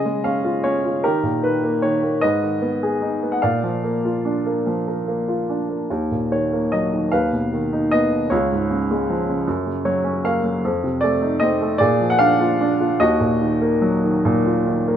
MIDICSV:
0, 0, Header, 1, 2, 480
1, 0, Start_track
1, 0, Key_signature, -6, "minor"
1, 0, Tempo, 794702
1, 620, Time_signature, 6, 3, 24, 8
1, 2064, Tempo, 819672
1, 4464, Tempo, 777202
1, 6384, Tempo, 792602
1, 7824, Tempo, 829876
1, 8961, End_track
2, 0, Start_track
2, 0, Title_t, "Upright piano"
2, 0, Program_c, 0, 0
2, 0, Note_on_c, 0, 49, 47
2, 0, Note_on_c, 0, 68, 47
2, 0, Note_on_c, 0, 75, 68
2, 14, Control_c, 0, 64, 127
2, 33, Note_on_c, 0, 56, 36
2, 146, Note_on_c, 0, 77, 60
2, 152, Note_off_c, 0, 75, 0
2, 153, Note_on_c, 0, 61, 43
2, 269, Note_on_c, 0, 65, 43
2, 380, Note_off_c, 0, 61, 0
2, 385, Note_on_c, 0, 73, 62
2, 389, Note_on_c, 0, 61, 44
2, 390, Note_off_c, 0, 77, 0
2, 500, Note_off_c, 0, 65, 0
2, 509, Note_on_c, 0, 65, 35
2, 597, Note_off_c, 0, 68, 0
2, 604, Note_off_c, 0, 49, 0
2, 607, Note_off_c, 0, 56, 0
2, 617, Note_off_c, 0, 61, 0
2, 621, Note_off_c, 0, 65, 0
2, 625, Note_on_c, 0, 67, 48
2, 627, Note_on_c, 0, 70, 68
2, 628, Control_c, 0, 64, 0
2, 629, Note_off_c, 0, 73, 0
2, 633, Note_on_c, 0, 51, 53
2, 744, Control_c, 0, 64, 127
2, 744, Note_on_c, 0, 46, 37
2, 856, Note_off_c, 0, 51, 0
2, 865, Note_on_c, 0, 51, 46
2, 866, Note_on_c, 0, 71, 59
2, 870, Note_off_c, 0, 70, 0
2, 989, Note_on_c, 0, 58, 44
2, 1096, Note_off_c, 0, 51, 0
2, 1102, Note_on_c, 0, 73, 64
2, 1105, Note_on_c, 0, 51, 49
2, 1110, Note_off_c, 0, 71, 0
2, 1218, Note_off_c, 0, 58, 0
2, 1227, Note_on_c, 0, 58, 41
2, 1317, Note_off_c, 0, 67, 0
2, 1322, Note_off_c, 0, 46, 0
2, 1334, Note_off_c, 0, 51, 0
2, 1337, Note_on_c, 0, 71, 49
2, 1338, Note_on_c, 0, 75, 71
2, 1339, Note_off_c, 0, 58, 0
2, 1346, Note_off_c, 0, 73, 0
2, 1346, Control_c, 0, 64, 0
2, 1352, Note_on_c, 0, 44, 52
2, 1444, Control_c, 0, 64, 127
2, 1466, Note_on_c, 0, 51, 39
2, 1580, Note_on_c, 0, 59, 47
2, 1709, Note_on_c, 0, 68, 47
2, 1825, Note_on_c, 0, 63, 47
2, 1940, Note_off_c, 0, 59, 0
2, 1949, Note_on_c, 0, 59, 37
2, 2005, Note_on_c, 0, 78, 49
2, 2039, Note_off_c, 0, 71, 0
2, 2042, Note_off_c, 0, 75, 0
2, 2049, Note_off_c, 0, 44, 0
2, 2050, Note_off_c, 0, 51, 0
2, 2056, Note_off_c, 0, 78, 0
2, 2059, Note_off_c, 0, 63, 0
2, 2059, Note_off_c, 0, 68, 0
2, 2065, Note_off_c, 0, 59, 0
2, 2066, Note_on_c, 0, 77, 63
2, 2068, Note_on_c, 0, 74, 47
2, 2073, Control_c, 0, 64, 0
2, 2074, Note_on_c, 0, 46, 52
2, 2186, Control_c, 0, 64, 127
2, 2192, Note_on_c, 0, 53, 40
2, 2311, Note_on_c, 0, 58, 41
2, 2435, Note_on_c, 0, 65, 39
2, 2552, Note_on_c, 0, 62, 43
2, 2667, Note_off_c, 0, 58, 0
2, 2676, Note_on_c, 0, 58, 38
2, 2787, Note_off_c, 0, 53, 0
2, 2796, Note_on_c, 0, 53, 42
2, 2919, Note_on_c, 0, 70, 30
2, 3028, Note_off_c, 0, 58, 0
2, 3037, Note_on_c, 0, 58, 40
2, 3149, Note_off_c, 0, 65, 0
2, 3157, Note_on_c, 0, 65, 35
2, 3247, Note_off_c, 0, 77, 0
2, 3249, Note_off_c, 0, 74, 0
2, 3272, Note_off_c, 0, 62, 0
2, 3281, Note_on_c, 0, 62, 38
2, 3388, Note_off_c, 0, 58, 0
2, 3397, Note_on_c, 0, 58, 28
2, 3495, Note_off_c, 0, 46, 0
2, 3497, Note_off_c, 0, 53, 0
2, 3502, Note_off_c, 0, 70, 0
2, 3507, Note_off_c, 0, 65, 0
2, 3511, Note_off_c, 0, 62, 0
2, 3512, Note_off_c, 0, 58, 0
2, 3520, Note_on_c, 0, 39, 46
2, 3521, Control_c, 0, 64, 0
2, 3626, Control_c, 0, 64, 127
2, 3643, Note_on_c, 0, 46, 34
2, 3762, Note_on_c, 0, 51, 41
2, 3764, Note_on_c, 0, 73, 55
2, 3887, Note_on_c, 0, 58, 40
2, 3997, Note_on_c, 0, 75, 61
2, 4006, Note_off_c, 0, 73, 0
2, 4006, Note_on_c, 0, 54, 41
2, 4115, Note_off_c, 0, 51, 0
2, 4124, Note_on_c, 0, 51, 41
2, 4213, Note_off_c, 0, 39, 0
2, 4217, Note_off_c, 0, 46, 0
2, 4226, Note_off_c, 0, 58, 0
2, 4230, Note_off_c, 0, 54, 0
2, 4230, Note_on_c, 0, 77, 63
2, 4233, Note_off_c, 0, 51, 0
2, 4235, Note_on_c, 0, 39, 46
2, 4236, Note_on_c, 0, 71, 50
2, 4237, Control_c, 0, 64, 0
2, 4239, Note_off_c, 0, 75, 0
2, 4341, Control_c, 0, 64, 127
2, 4355, Note_on_c, 0, 47, 35
2, 4473, Note_on_c, 0, 51, 44
2, 4596, Note_on_c, 0, 63, 44
2, 4684, Note_off_c, 0, 77, 0
2, 4711, Note_on_c, 0, 75, 72
2, 4719, Note_on_c, 0, 59, 46
2, 4830, Note_off_c, 0, 51, 0
2, 4839, Note_on_c, 0, 51, 33
2, 4931, Note_off_c, 0, 71, 0
2, 4933, Note_off_c, 0, 39, 0
2, 4938, Note_off_c, 0, 47, 0
2, 4946, Note_off_c, 0, 63, 0
2, 4948, Note_on_c, 0, 73, 62
2, 4950, Note_off_c, 0, 59, 0
2, 4953, Note_off_c, 0, 51, 0
2, 4958, Note_on_c, 0, 37, 54
2, 4960, Note_off_c, 0, 75, 0
2, 4961, Control_c, 0, 64, 0
2, 4962, Note_on_c, 0, 65, 39
2, 5068, Control_c, 0, 64, 127
2, 5085, Note_on_c, 0, 44, 42
2, 5202, Note_on_c, 0, 49, 44
2, 5325, Note_on_c, 0, 56, 47
2, 5441, Note_on_c, 0, 53, 50
2, 5554, Note_off_c, 0, 49, 0
2, 5563, Note_on_c, 0, 49, 42
2, 5649, Note_off_c, 0, 37, 0
2, 5656, Note_off_c, 0, 44, 0
2, 5663, Note_off_c, 0, 56, 0
2, 5665, Note_off_c, 0, 53, 0
2, 5671, Note_off_c, 0, 49, 0
2, 5674, Note_on_c, 0, 42, 54
2, 5675, Control_c, 0, 64, 0
2, 5792, Note_on_c, 0, 49, 35
2, 5799, Control_c, 0, 64, 127
2, 5897, Note_off_c, 0, 73, 0
2, 5906, Note_on_c, 0, 73, 58
2, 5907, Note_on_c, 0, 54, 48
2, 6023, Note_on_c, 0, 61, 48
2, 6122, Note_off_c, 0, 65, 0
2, 6127, Note_off_c, 0, 73, 0
2, 6148, Note_on_c, 0, 58, 51
2, 6152, Note_on_c, 0, 77, 64
2, 6258, Note_off_c, 0, 54, 0
2, 6267, Note_on_c, 0, 54, 44
2, 6366, Note_off_c, 0, 42, 0
2, 6370, Note_off_c, 0, 49, 0
2, 6372, Note_off_c, 0, 77, 0
2, 6374, Note_off_c, 0, 61, 0
2, 6380, Note_off_c, 0, 58, 0
2, 6383, Note_off_c, 0, 54, 0
2, 6393, Control_c, 0, 64, 0
2, 6397, Note_on_c, 0, 41, 57
2, 6511, Control_c, 0, 64, 127
2, 6513, Note_on_c, 0, 48, 46
2, 6616, Note_on_c, 0, 74, 66
2, 6632, Note_on_c, 0, 57, 53
2, 6746, Note_on_c, 0, 63, 45
2, 6851, Note_on_c, 0, 75, 71
2, 6865, Note_off_c, 0, 74, 0
2, 6869, Note_on_c, 0, 60, 50
2, 6974, Note_off_c, 0, 57, 0
2, 6983, Note_on_c, 0, 57, 49
2, 7085, Note_off_c, 0, 41, 0
2, 7086, Note_on_c, 0, 74, 76
2, 7087, Note_off_c, 0, 48, 0
2, 7091, Note_off_c, 0, 63, 0
2, 7096, Note_on_c, 0, 68, 55
2, 7097, Note_off_c, 0, 57, 0
2, 7097, Note_off_c, 0, 60, 0
2, 7100, Note_on_c, 0, 46, 59
2, 7102, Note_off_c, 0, 75, 0
2, 7109, Control_c, 0, 64, 0
2, 7207, Control_c, 0, 64, 127
2, 7222, Note_on_c, 0, 53, 39
2, 7277, Note_off_c, 0, 74, 0
2, 7278, Note_on_c, 0, 78, 71
2, 7329, Note_off_c, 0, 78, 0
2, 7330, Note_on_c, 0, 77, 86
2, 7339, Note_on_c, 0, 62, 52
2, 7463, Note_on_c, 0, 65, 50
2, 7578, Note_off_c, 0, 62, 0
2, 7587, Note_on_c, 0, 62, 56
2, 7695, Note_off_c, 0, 65, 0
2, 7704, Note_on_c, 0, 65, 44
2, 7798, Note_off_c, 0, 68, 0
2, 7803, Note_off_c, 0, 46, 0
2, 7808, Note_off_c, 0, 53, 0
2, 7820, Note_off_c, 0, 62, 0
2, 7822, Note_off_c, 0, 65, 0
2, 7822, Note_on_c, 0, 75, 76
2, 7824, Note_on_c, 0, 39, 59
2, 7827, Note_on_c, 0, 66, 54
2, 7831, Control_c, 0, 64, 0
2, 7834, Note_off_c, 0, 77, 0
2, 7938, Control_c, 0, 64, 127
2, 7939, Note_on_c, 0, 46, 47
2, 8061, Note_on_c, 0, 51, 50
2, 8179, Note_on_c, 0, 58, 46
2, 8295, Note_on_c, 0, 54, 55
2, 8415, Note_off_c, 0, 51, 0
2, 8424, Note_on_c, 0, 51, 51
2, 8537, Note_off_c, 0, 46, 0
2, 8546, Note_on_c, 0, 46, 60
2, 8666, Note_on_c, 0, 65, 40
2, 8758, Note_off_c, 0, 75, 0
2, 8761, Note_off_c, 0, 66, 0
2, 8775, Note_off_c, 0, 51, 0
2, 8784, Note_on_c, 0, 51, 53
2, 8899, Note_off_c, 0, 58, 0
2, 8907, Note_on_c, 0, 58, 47
2, 8961, Note_off_c, 0, 39, 0
2, 8961, Note_off_c, 0, 46, 0
2, 8961, Note_off_c, 0, 51, 0
2, 8961, Note_off_c, 0, 54, 0
2, 8961, Note_off_c, 0, 58, 0
2, 8961, Note_off_c, 0, 65, 0
2, 8961, End_track
0, 0, End_of_file